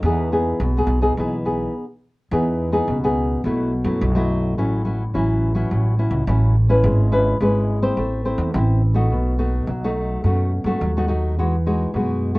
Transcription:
0.03 upright bass E2, nylon-string guitar E3 B3 D#4 G#4
0.32 nylon-string guitar B3 D#4 G#4
0.60 upright bass B1, nylon-string guitar B2
0.77 nylon-string guitar B3 D#4 G#4
0.87 upright bass B1
1.02 nylon-string guitar B3 D#4 G#4
1.18 upright bass B1, nylon-string guitar E3 B3 D#4 G#4
1.46 nylon-string guitar B3 D#4 G#4
2.31 upright bass E2, nylon-string guitar E3 B3 D#4 G#4
2.72 nylon-string guitar B3 D#4 G#4
2.88 upright bass C#2, nylon-string guitar B2
3.04 nylon-string guitar B3 D#4 G#4
3.44 upright bass B1, nylon-string guitar B2 F#3 A3 E4
3.84 upright bass F#2, nylon-string guitar F#3 A3 E4
4.01 upright bass B1, nylon-string guitar F#2
4.15 nylon-string guitar F#3 A3 E4
4.58 upright bass A1, nylon-string guitar A2 F#3 C#4 E4
4.85 nylon-string guitar F#3 C#4 E4
5.14 upright bass A1, nylon-string guitar E3 F#3 C#4 E4
5.55 nylon-string guitar F#3 C#4 E4
5.71 upright bass A1, nylon-string guitar A2
5.99 nylon-string guitar F#3 C#4 E4
6.11 upright bass C#2
6.27 upright bass A1, nylon-string guitar A2 F#3 C#4 E4
6.69 nylon-string guitar C#4 E4 B4
6.83 upright bass G#1, nylon-string guitar G#3
7.12 nylon-string guitar C#4 E4 B4
7.41 upright bass G#1, nylon-string guitar G#3 C#4 E4 B4
7.83 nylon-string guitar C4 E4 C5
7.97 upright bass A1, nylon-string guitar A3
8.25 nylon-string guitar C4 E4 C5
8.38 upright bass E2
8.54 upright bass A1, nylon-string guitar E3 C4 E4 C5
8.94 nylon-string guitar A3 D#4 F#4
9.11 upright bass B1, nylon-string guitar B2
9.38 nylon-string guitar A3 D#4 F#4
9.67 upright bass B1, nylon-string guitar F#3
9.84 nylon-string guitar A3 D#4 F#4
10.24 upright bass F#2, nylon-string guitar B2 A3 D#4 F#4
10.64 upright bass F#2, nylon-string guitar A3 D#4 F#4
10.81 upright bass D#2, nylon-string guitar F#3
10.97 nylon-string guitar A3 D#4 F#4
11.08 nylon-string guitar A3 D#4 F#4
11.38 upright bass E2, nylon-string guitar E3 G#3 D#4 F#4
11.66 nylon-string guitar G#3 D#4 F#4
11.94 upright bass F#2, nylon-string guitar B2 G#3 D#4 F#4
12.35 nylon-string guitar A3 D#4 F#4

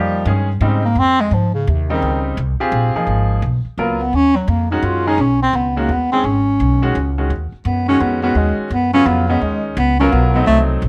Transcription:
Already playing: upright bass F2, grand piano F3 A#3 D#4 G4, bass clarinet G3
0.25 upright bass G2, grand piano D#3 G#3 C#4 G#4
0.61 upright bass G#2, grand piano C#3 G3 C4 D#4, bass clarinet G#3
0.85 bass clarinet A#3
0.95 upright bass F2
0.99 bass clarinet C4
1.21 bass clarinet G#3
1.31 upright bass G#2, bass clarinet F3
1.54 bass clarinet C#3
1.67 upright bass D#2, bass clarinet C3
1.90 grand piano C#3 G3 C4 D#4, bass clarinet D#3
2.02 upright bass C#2
2.37 upright bass C2
2.60 grand piano C4 F4 G4 G#4, muted upright bass stroke
2.72 upright bass A#1
2.94 grand piano F3 A#3 D#4 G#4, muted upright bass stroke
3.07 upright bass G#1
3.42 upright bass B1
3.65 muted upright bass stroke
3.78 upright bass C#2, grand piano F#3 B3 F4 A#4, bass clarinet A#3
4.01 bass clarinet B3
4.13 upright bass D#2, bass clarinet C#4
4.36 bass clarinet F#3
4.48 upright bass F2, bass clarinet A#3
4.71 grand piano D#3 G#3 C#4 F#4, bass clarinet D#4
4.82 upright bass F#2, bass clarinet F4
5.07 grand piano D#3 G#3 C#4 G#4, bass clarinet D#4
5.18 upright bass B1, bass clarinet C#4
5.42 bass clarinet C4
5.53 upright bass C#2, bass clarinet B3
5.76 grand piano D#3 G#3 C#4 F#4, bass clarinet A#3
5.89 upright bass D#2, bass clarinet B3
6.12 grand piano D#3 G#3 C#4 G#4, bass clarinet C4
6.24 upright bass G#1, bass clarinet C#4
6.60 upright bass B1
6.82 grand piano D#3 G#3 C#4 F#4
6.95 upright bass C#2
7.18 grand piano D#3 G#3 C#4 F#4
7.30 upright bass D#2
7.52 muted upright bass stroke
7.65 upright bass F#2, bass clarinet B3
7.88 grand piano D#3 G#3 C#4 F#4, bass clarinet C#4
8.00 upright bass F2, bass clarinet B3
8.23 grand piano D#3 G#3 C#4 F#4, bass clarinet B3
8.35 upright bass D#2, bass clarinet G#3
8.58 muted upright bass stroke
8.70 upright bass F#2, bass clarinet B3
8.93 grand piano C#3 F#3 B3 F4, bass clarinet C#4
9.06 upright bass F2, bass clarinet B3
9.28 grand piano D#3 G#3 C#4 D#4, bass clarinet B3
9.41 upright bass D#2, bass clarinet G#3
9.77 upright bass C#2, bass clarinet B3
9.99 grand piano F#3 B3 F4 A#4, bass clarinet C#4
10.12 upright bass B1, bass clarinet B3
10.34 grand piano F#3 A3 C4 D#4, bass clarinet B3
10.47 upright bass C2, bass clarinet A3
10.82 upright bass A#1

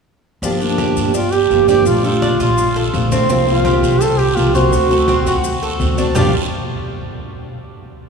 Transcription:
0.42 upright bass G1, nylon-string guitar D3 F3 A#3 D4 G4, cuban tres D4, high conga, long guiro, maracas
0.60 nylon-string guitar F3 A#3 D4 G4, duduk D4, high conga, maracas
0.78 cuban tres G4, high conga, short guiro, maracas
0.97 upright bass G2, high conga, short guiro, maracas
1.05 upright bass G1
1.14 duduk F4, cuban tres D5, muted nylon-string guitar stroke, high conga, long guiro, maracas
1.32 duduk G4, cuban tres G4, high conga, maracas
1.50 upright bass G1, nylon-string guitar F3 A#3 D4 G4, high conga, short guiro, maracas
1.68 nylon-string guitar F3 A#3 D4 G4, duduk G4, cuban tres D5, high conga, short guiro, maracas
1.86 upright bass A#1, nylon-string guitar F3 A3 D4 F4, duduk F4, high conga, long guiro, maracas
2.04 nylon-string guitar A3 D4 F4, duduk F4, cuban tres A4, high conga, maracas
2.22 cuban tres D4, high conga, short guiro, maracas
2.40 upright bass A#2, cuban tres F4, high conga, short guiro, maracas
2.49 upright bass A#1
2.58 muted nylon-string guitar stroke, high conga, long guiro, maracas
2.76 cuban tres A4, high conga, maracas
2.93 upright bass A#1, nylon-string guitar F3 A3 D4 F4, high conga, short guiro, maracas
3.11 nylon-string guitar A3 D4 F4, cuban tres C4, high conga, short guiro, maracas
3.29 upright bass C2, nylon-string guitar C3 F3 A#3 C4 F4, cuban tres C4, long guiro, maracas
3.47 nylon-string guitar F3 A#3 C4 F4, duduk F4, high conga, maracas
3.65 cuban tres G4, high conga, short guiro, maracas
3.82 upright bass C3, high conga, short guiro, maracas
3.92 upright bass C2
4.00 duduk A4, cuban tres C5, muted nylon-string guitar stroke, high conga, long guiro, maracas
4.18 duduk G4, cuban tres G4, high conga, maracas
4.35 upright bass C2, nylon-string guitar F3 A#3 C4 F4, duduk F4, high conga, short guiro, maracas
4.53 nylon-string guitar F3 A#3 C4 F4, duduk F#4, cuban tres C5, high conga, short guiro, maracas
4.71 upright bass D2, nylon-string guitar D3 A3 C4 F#4, high conga, long guiro, maracas
4.89 nylon-string guitar A3 C4 F#4, cuban tres A4, high conga, maracas
5.08 cuban tres C4, high conga, short guiro, maracas
5.25 upright bass D3, cuban tres F#4, high conga, short guiro, maracas
5.35 upright bass D2
5.43 muted nylon-string guitar stroke, high conga, long guiro, maracas
5.62 cuban tres A4, high conga, maracas
5.79 upright bass D2, nylon-string guitar D3 A3 C4 F#4, high conga, short guiro, maracas
5.97 nylon-string guitar A3 C4 F#4, cuban tres D4, high conga, short guiro, maracas
6.15 upright bass G1, nylon-string guitar G2 D3 F3 A#3 D4 G4, cuban tres G3 D4 F4, duduk G4, low conga, long guiro, maracas

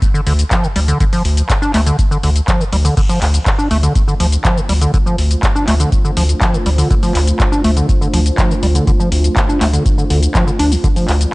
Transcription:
0.02 kick, closed hi-hat, cabasa
0.14 acid bass D3, cabasa
0.27 analog synth bass D2, acid bass D3, open hi-hat
0.39 closed hi-hat, cabasa
0.51 acid bass F3, kick, clap, closed hi-hat, cabasa
0.64 acid bass D3, cabasa
0.76 analog synth bass D2, acid bass G3, open hi-hat
0.88 acid bass D3, closed hi-hat, cabasa
1.00 acid bass D3, kick, closed hi-hat, cabasa
1.13 acid bass F3, open hi-hat, cabasa
1.25 analog synth bass D2, open hi-hat
1.37 closed hi-hat, cabasa
1.49 kick, clap, closed hi-hat, cabasa
1.62 acid bass D4, cabasa
1.74 analog synth bass D2, acid bass A3, clap, open hi-hat
1.86 acid bass D3, closed hi-hat, cabasa
1.99 kick, closed hi-hat, cabasa
2.11 acid bass D3, cabasa
2.23 analog synth bass D2, acid bass D3, open hi-hat
2.36 closed hi-hat, cabasa
2.48 acid bass F3, kick, clap, closed hi-hat, cabasa
2.60 acid bass D3, cabasa
2.73 analog synth bass D2, acid bass G3, open hi-hat
2.85 acid bass D3, open hi-hat, cabasa
2.97 acid bass D3, analog synth pad A3 D4 F4 C5, kick, closed hi-hat, crash, cabasa
3.09 acid bass F3, open hi-hat, cabasa
3.22 analog synth bass D2, clap, open hi-hat
3.34 closed hi-hat, cabasa
3.46 kick, clap, closed hi-hat, cabasa
3.59 acid bass D4, cabasa
3.71 analog synth bass D2, acid bass A3, open hi-hat
3.83 acid bass D3, closed hi-hat, cabasa
3.95 kick, closed hi-hat, cabasa
4.08 acid bass D3, cabasa
4.20 analog synth bass D2, acid bass F3, open hi-hat
4.32 closed hi-hat, cabasa
4.45 acid bass F3, kick, clap, closed hi-hat, cabasa
4.57 acid bass D3, cabasa
4.69 analog synth bass D2, acid bass G3, open hi-hat
4.82 acid bass D3, closed hi-hat, cabasa
4.94 acid bass D3, kick, closed hi-hat, cabasa
5.06 acid bass F3, cabasa
5.18 analog synth bass D2, open hi-hat
5.31 closed hi-hat, cabasa
5.43 kick, clap, closed hi-hat, cabasa
5.55 acid bass D4, cabasa
5.68 analog synth bass D2, acid bass A3, clap, open hi-hat
5.80 acid bass D3, closed hi-hat, cabasa
5.92 kick, closed hi-hat, cabasa
6.05 acid bass D3, cabasa
6.17 analog synth bass D2, acid bass F3, open hi-hat
6.29 closed hi-hat, cabasa
6.41 acid bass F3, kick, clap, closed hi-hat, cabasa
6.54 acid bass D3, cabasa
6.66 analog synth bass D2, acid bass G3, open hi-hat
6.78 acid bass D3, open hi-hat, cabasa
6.91 acid bass D3, kick, closed hi-hat, cabasa
7.03 acid bass F3, open hi-hat, cabasa
7.15 analog synth bass D2, clap, open hi-hat
7.27 closed hi-hat, cabasa
7.40 kick, clap, closed hi-hat, cabasa
7.52 acid bass D4, cabasa
7.64 analog synth bass D2, acid bass A3, open hi-hat
7.77 acid bass D3, closed hi-hat, cabasa
7.89 kick, closed hi-hat, cabasa
8.01 acid bass D3, cabasa
8.13 analog synth bass D2, acid bass F3, open hi-hat
8.26 closed hi-hat, cabasa
8.38 acid bass F3, kick, clap, closed hi-hat, cabasa
8.50 acid bass D3, cabasa
8.63 analog synth bass D2, acid bass G3, open hi-hat
8.75 acid bass D3, closed hi-hat, cabasa
8.87 acid bass D3, kick, closed hi-hat, cabasa
9.00 acid bass F3, cabasa
9.12 analog synth bass D2, open hi-hat
9.24 closed hi-hat, cabasa
9.36 kick, clap, closed hi-hat, cabasa
9.49 acid bass D4, cabasa
9.61 analog synth bass D2, acid bass A3, clap, open hi-hat
9.73 acid bass D3, closed hi-hat, cabasa
9.86 kick, closed hi-hat, cabasa
9.98 acid bass D3, cabasa
10.10 analog synth bass D2, acid bass D3, open hi-hat
10.23 closed hi-hat, cabasa
10.35 acid bass F3, kick, clap, closed hi-hat, cabasa
10.47 acid bass D3, cabasa
10.59 analog synth bass D2, acid bass D4, open hi-hat
10.72 acid bass D3, open hi-hat, cabasa
10.84 acid bass D3, analog synth pad D5, kick, closed hi-hat, cabasa
10.96 acid bass F3, open hi-hat, cabasa
11.09 analog synth bass D2, clap, open hi-hat
11.21 closed hi-hat, cabasa

